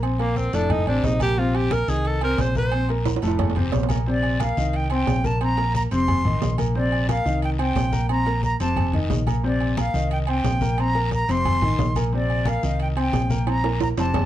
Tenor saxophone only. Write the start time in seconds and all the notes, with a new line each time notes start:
0.20 A#3
0.37 C4
0.54 D4
0.72 D#4
0.88 D4
1.05 D#4
1.22 G4
1.38 F4
1.55 G4
1.73 A#4
1.89 G#4
2.07 A4
2.24 A#4
2.41 C5
2.58 C5